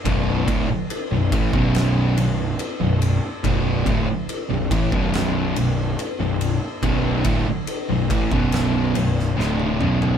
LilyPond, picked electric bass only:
\new Staff \with { instrumentName = "Picked electric bass" } { \clef bass \time 4/4 \key b \minor \tempo 4 = 71 b,,,8 d,,16 r8 b,,,16 a,,16 b,,,8. b,,,8 r16 b,,,8 r16 | b,,,8 d,,16 r8 b,,,16 a,,16 b,,,8. b,,,8 r16 b,,,8 r16 | b,,,8 d,,16 r8 b,,,16 a,,16 b,,,8. b,,,8 d,,8 b,,,8 | }